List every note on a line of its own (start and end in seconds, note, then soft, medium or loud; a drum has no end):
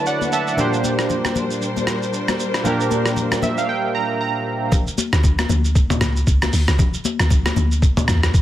0.00 0.53 D3 medium
0.00 0.54 F#3 medium
0.00 0.54 A3 medium
0.00 4.68 D4 medium
0.00 0.54 E4 medium
0.00 0.55 F#4 medium
0.00 0.56 B4 medium
0.00 0.60 C#5 medium
0.00 0.33 A5 medium
0.06 0.31 D5 medium
0.06 0.33 F#5 medium
0.06 shaker medium
0.21 high conga medium
0.21 shaker medium
0.32 0.57 E5 medium
0.32 0.46 F#5 medium
0.32 0.47 A5 medium
0.32 shaker medium
0.47 0.72 D5 soft
0.47 0.72 F#5 medium
0.47 shaker soft
0.57 2.60 A#2 medium
0.57 4.68 G3 medium
0.57 2.61 A#3 medium
0.57 2.61 D4 medium
0.57 2.62 G4 medium
0.57 4.68 A#4 medium
0.57 4.68 C5 medium
0.57 low conga medium
0.57 shaker medium
0.61 2.62 C5 medium
0.73 shaker medium
0.84 high conga medium
0.84 shaker loud
0.99 cross-stick medium
0.99 shaker medium
1.10 low conga medium
1.10 shaker medium
1.25 cross-stick loud
1.25 high conga medium
1.25 shaker medium
1.35 high conga medium
1.35 low conga medium
1.35 shaker medium
1.51 shaker medium
1.61 shaker medium
1.77 high conga medium
1.77 shaker medium
1.87 cross-stick loud
1.87 high conga medium
1.87 shaker medium
2.02 shaker medium
2.13 shaker medium
2.28 cross-stick medium
2.28 high conga medium
2.28 shaker medium
2.39 shaker medium
2.54 cross-stick medium
2.54 shaker soft
2.63 4.67 A#2 medium
2.63 4.68 A#3 medium
2.63 4.68 D4 medium
2.63 4.69 G4 medium
2.63 low conga medium
2.63 shaker medium
2.67 4.69 A#4 medium
2.80 shaker medium
2.91 high conga medium
2.91 shaker loud
3.06 cross-stick medium
3.06 shaker medium
3.16 low conga medium
3.16 shaker medium
3.32 cross-stick loud
3.32 high conga medium
3.32 shaker medium
3.42 3.57 E5 medium
3.42 high conga medium
3.42 low conga medium
3.42 shaker medium
3.58 3.68 F5 medium
3.58 shaker medium
3.69 3.93 G5 medium
3.95 4.19 A#5 medium
4.21 4.69 A#5 medium
4.72 kick loud
4.72 low conga medium
4.72 shaker medium
4.87 shaker medium
4.98 high conga medium
4.98 shaker loud
5.13 5.45 D2 loud
5.13 cross-stick loud
5.13 shaker medium
5.23 kick loud
5.23 low conga medium
5.23 shaker medium
5.39 cross-stick loud
5.39 high conga medium
5.39 shaker medium
5.49 5.86 D2 loud
5.49 high conga medium
5.49 low conga medium
5.49 shaker medium
5.64 shaker medium
5.75 kick loud
5.75 shaker medium
5.90 mid tom loud
5.90 high conga medium
5.90 shaker medium
6.01 6.24 C#2 loud
6.01 cross-stick loud
6.01 high conga medium
6.01 shaker loud
6.16 shaker medium
6.27 6.50 C#2 medium
6.27 kick loud
6.27 shaker medium
6.42 cross-stick loud
6.42 high conga medium
6.42 shaker medium
6.53 6.66 D2 medium
6.53 open hi-hat medium
6.53 shaker medium
6.68 6.78 C#2 medium
6.68 cross-stick medium
6.68 shaker medium
6.79 kick loud
6.79 low conga medium
6.79 shaker medium
6.94 shaker medium
7.05 high conga medium
7.05 shaker loud
7.19 7.52 D2 loud
7.19 cross-stick loud
7.19 shaker medium
7.30 kick loud
7.30 low conga medium
7.30 shaker medium
7.46 cross-stick loud
7.46 high conga medium
7.46 shaker medium
7.56 7.93 D2 medium
7.56 high conga medium
7.56 low conga medium
7.56 shaker medium
7.71 shaker medium
7.82 kick loud
7.82 shaker medium
7.97 mid tom loud
7.97 high conga medium
7.97 shaker medium
8.08 8.31 E2 loud
8.08 cross-stick loud
8.08 high conga medium
8.08 shaker loud
8.23 cross-stick loud
8.23 shaker medium
8.34 8.42 D2 medium
8.34 kick loud
8.34 shaker medium